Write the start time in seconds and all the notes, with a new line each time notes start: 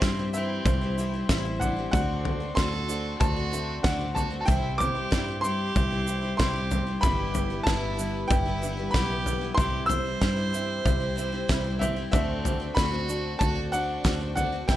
Already playing: C2 C3 C4 G4 E5 C6
0.00 G2 C3 E3 G3 C4 E4 C5 E5, kick, snare, shaker
0.17 G3 C4 E4
0.33 E3 G3 C4 E4 C5 E5, shaker
0.37 E4
0.65 C2 G3 C4 E4 C5 E5, kick, floor tom, shaker
0.81 G3 C4 E4
0.96 E3 G3 C4 E4 C5 E5, shaker
1.01 E4
1.14 G3 C4 E4
1.28 A1 C3 E3 G3 C4 E4 C5 E5, kick, snare, shaker
1.45 G3 C4 E4
1.60 G3 C4 D4 E4 E5 F#5, floor tom, shaker
1.77 G3 C4 E4
1.91 D2 D3 A3 C4 D4 F#4 C5 D5 F#5, kick, floor tom, shaker
1.95 F#4
2.24 A3 D4 F#4 C5 D5, floor tom
2.40 A3 C4 F#4
2.55 D2 D3 A3 C4 D4 F#4 A4 C5 D5 C6, kick, snare, shaker
2.73 A3 C4 F#4
2.88 D3 A3 C4 D4 F#4 C5 D5, shaker
3.18 D2 A3 D4 F#4 C5 D5 A5, kick, floor tom, shaker
3.36 A3 C4 F#4
3.52 D3 A3 C4 D4 F#4 C5 E5, shaker
3.83 D2 D3 A3 C4 D4 F#4 E5 F#5, kick, snare, shaker
3.99 A3 C4 F#4
4.14 A3 D4 F#4 C5 D5 A5, floor tom, shaker
4.30 A3 C4 F#4
4.40 F#4 A5
4.45 C2 C3 E3 G3 C4 E4 G4 C5 E5 G5, kick, floor tom, shaker
4.50 E5 C6
4.78 G3 C4 E4 G4 C5 E5 D6, floor tom, shaker
4.95 G3 C4 E4
5.11 G2 C3 E3 G3 C4 E4 C5 D5, kick, snare, shaker
5.26 G3 C4 E4
5.41 E3 G3 C4 E4 G4 C5 E5 C6, shaker
5.45 E4
5.75 C2 G3 C4 E4 C5 E5, kick, floor tom, shaker
5.90 G3 C4 E4
6.06 E3 G3 C4 E4 C5 E5, shaker
6.22 G3 C4 E4
6.37 C2 C3 E3 G3 C4 E4 G4 C5 E5 C6, kick, snare, shaker
6.55 G3 C4 E4
6.71 G3 C4 E4 C5 E5, floor tom, shaker
6.87 G3 C4 E4
7.01 G1 G2 D3 E3 G3 B3 D4 E4 G4 B4 E5 B5, kick, floor tom, shaker
7.05 E4
7.35 G3 D4 E4 B4 E5, floor tom, shaker
7.50 E3 G3 B3 E4
7.63 G1 G2 D3 E3 G3 D4 E4 B4 A5, kick, snare, shaker
7.68 G3 B3 E4 E5
7.97 E3 G3 B3 D4 E4 B4 E5, shaker
8.28 G1 G3 D4 E4 B4 E5 G5, kick, floor tom, shaker
8.46 E3 G3 B3 E4
8.62 E3 G3 B3 D4 E4 B4 E5, shaker
8.77 E3 G3 B3 E4
8.91 B1 G2 D3 E3 G3 D4 E4 G4 B4 F#5 B5, kick, snare
8.95 G3 B3 E4, shaker
9.10 E3 G3 B3 E4
9.26 G3 D4 E4 B4 E5, floor tom, shaker
9.41 E3 G3 B3 E4
9.55 C2 C3 E3 G3 C4 E4 G4 C5 E5 C6, kick, floor tom
9.59 C4 E4, shaker
9.86 G3 C4 E4 C5 E5 E6, floor tom, shaker
10.05 G3 C4 E4
10.21 G2 C3 E3 G3 C4 E4 C5 E5, kick, snare, shaker
10.37 G3 C4 E4
10.53 E3 G3 C4 E4 C5 E5, shaker
10.85 C2 G3 C4 E4 C5 E5, kick, floor tom, shaker
11.00 G3 C4 E4
11.16 E3 G3 C4 E4 C5 E5, shaker
11.32 G3 C4 E4
11.49 C2 C3 E3 G3 C4 E4 C5 E5, kick, snare, shaker
11.64 G3 C4 E4
11.79 G3 C4 E4 C5 E5, floor tom, shaker
11.96 G3 C4 E4
12.10 D2 D3 A3 C4 D4 F#4 C5 D5 E5, kick, floor tom
12.14 F#4, shaker
12.45 A3 D4 F#4 C5 E5, floor tom, shaker
12.60 A3 C4 F#4
12.74 D2 D3 A3 C4 D4 F#4 C5 D5 B5, kick, snare, shaker
12.92 A3 C4 F#4
13.08 D3 A3 C4 D4 F#4 C5 D5, shaker
13.39 D2 A3 D4 F#4 C5 D5 A5, kick, floor tom, shaker
13.55 A3 C4 F#4
13.72 D3 A3 C4 D4 F#4 C5 D5 F#5, shaker
14.04 D2 D3 A3 C4 D4 F#4 C5 D5, kick, snare, shaker
14.20 A3 C4 F#4
14.35 A3 D4 F#4 C5 D5 F#5, floor tom, shaker
14.52 A3 C4 F#4
14.67 C2 C3 E3 G3 C4 E4 G4 C5 E5 G5, kick, snare, shaker